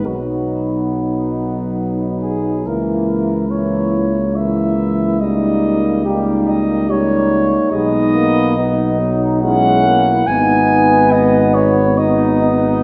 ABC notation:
X:1
M:3/4
L:1/8
Q:1/4=70
K:G#m
V:1 name="Flugelhorn"
F2 z3 G | A2 c2 e2 | d2 =G d c2 | d3 z f2 |
g2 d c d2 |]
V:2 name="French horn section"
D6 | E2 E2 E2 | D2 D2 D2 | D2 D2 E2 |
D2 D2 D2 |]
V:3 name="Trombone section"
B,6 | A,2 A,2 A,2 | A,2 A,2 A,2 | B,2 D2 C2 |
B,4 D D |]
V:4 name="Trombone" clef=bass
F,6 | E,2 E, z E, E, | =G,2 G,2 G,2 | G, A, B, F, G, A, |
B,4 B,2 |]
V:5 name="Tuba" clef=bass
B,,,6 | C,,6- | C,,6 | B,,,6 |
G,,,6 |]